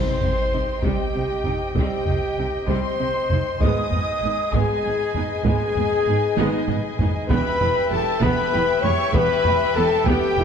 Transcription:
Already playing: C3 G3 C4 D#4 G4 C5 D#5 G5 C6
0.21 C2 C3 C4, taiko low
0.52 C2 C3 C4 D#4
0.82 C2 C3 G3 C4 G4 G5, taiko
1.14 C2 C3 C4
1.44 C2 C3 C4 D#4, taiko low
1.75 C2 C3 G3 C4 G4 G5, taiko
2.06 C2 C3 C4, taiko low
2.38 C2 C3 C4 D#4
2.67 C2 C3 G3 C4 C5 C6, taiko
2.99 C2 C3 C4
3.30 C2 C3 C4 D#4, taiko low
3.60 G#1 G#2 G#3 B3 D#4 G#4 B4 D#5 G#5 D#6, taiko
3.91 G#1 G#2 B3, taiko low
4.22 G#1 G#2 B3 D#4
4.52 G#1 G#2 G#3 B3 G#4 G#5, taiko
4.84 G#1 G#2 B3
5.14 G#1 G#2 B3 D#4, taiko low
5.44 G#1 G#2 G#3 B3 G#4 G#5, taiko
5.76 G#1 G#2 B3, taiko low
6.07 G#1 G#2 B3 D#4
6.37 G#1 G#2 G#3 B3 D#4 D#5, taiko mid
6.68 G#1 G#2 B3, taiko low-mid
6.99 G#1 G#2 B3 D#4, taiko low
7.28 E1 E2 B3 E4 G4 B4 E5 G5 B5, taiko
7.60 E1 E2 B3 E4, taiko low
7.90 E1 E2 B3 G4 A4 A5
8.21 E1 E2 B3 B4 B5, taiko
8.53 E1 E2 B3 E4
8.82 E1 E2 B3 G4 C#5 C#6, taiko low
9.13 E1 E2 B3 B4 B5, taiko
9.44 E1 E2 B3 E4, taiko low
9.74 E1 E2 B3 G4 A4 A5
10.05 E1 E2 B3 G4 G5, taiko
10.37 E1 E2 B3 E4

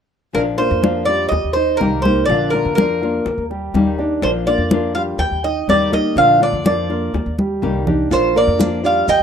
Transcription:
0.33 A#1 F3 A#3 D4 F4 A#4, high bongo, high conga
0.58 A#3 D4 F4 A#4 C5, high bongo, high conga
0.71 F2
0.82 F3 A#3 D4 F4, high bongo, high conga
1.05 G3 A#3 D4 F4 G4 D5, high conga
1.29 D#2 D#5, muted nylon-string guitar stroke, high bongo, high conga
1.44 D#2
1.53 D#4 C5 D#5, high bongo, high conga
1.77 C2 D#3 A#4, high bongo, low bongo, high conga
1.81 G3 A#3 D#4 G4
2.02 A#3 G4 A#4 C5, high bongo, high conga
2.06 A#3 D#4
2.26 A#1 D3 F3 D4 D5
2.30 A#3 D4 F4, high bongo, high conga
2.50 A#3 F4 A#4, high bongo, high conga
2.54 D4
2.65 F2
2.75 F3 A#3 D4 F4 A#4, high bongo, high conga
2.80 F4
3.01 A#3 D4 F4 A#4, high conga
3.25 D#2, muted nylon-string guitar stroke, high bongo, high conga
3.38 D#2
3.50 G3 G4, high bongo, high conga
3.74 D#2 D#3 G3 A#3 D#4 G4, high bongo, low bongo, high conga
3.98 A#3 D4 D#4 G4 D5, high bongo
4.22 A#1 F3 A#3 D4 F4 C5, high bongo, high conga
4.47 A#3 D4 F4 A#4 D5, high bongo, high conga
4.58 F2
4.71 F3 A#3 D4 F4, high bongo, high conga
4.95 G3 A#3 D4 F4 G4 F5, high conga
5.18 D#2 G5, muted nylon-string guitar stroke, high bongo, high conga
5.31 D#2
5.44 D#4 D#5, high bongo, high conga
5.68 D#2 D#3 G3 A#3 D#4 G4 D5, high bongo, low bongo, high conga
5.92 A#3 D#4 G4 A#4 D#5, high bongo, high conga
6.16 A#1 D3 F3 A#3 D4 F4 F5, high bongo, high conga
6.40 A#3 D4 F4 D5, high bongo, high conga
6.53 F2
6.65 F3 A#3 D4 F4 D5, high bongo, high conga
6.90 A#3 D4 F4 A#4, high conga
7.14 D#2, muted nylon-string guitar stroke, high bongo, high conga
7.26 D#2
7.39 G3 G4, high bongo, high conga
7.62 C2 D#3 G3 A#3 D#4 G4, high bongo, low bongo
7.87 A#3 D4 D#4 G4 D5, high bongo, low conga
8.10 A#1 F3 A#3 D4 F4 C5, high bongo, maracas
8.35 A#3 D4 F4 A#4 D5, high bongo, high conga
8.47 F2
8.59 F3 A#3 D4 F4, high bongo, high conga, maracas
8.84 G3 A#3 D4 F4 G4 D5 F5, high conga, maracas
9.08 D#2 D#5 G5, muted nylon-string guitar stroke, high bongo, high conga, maracas

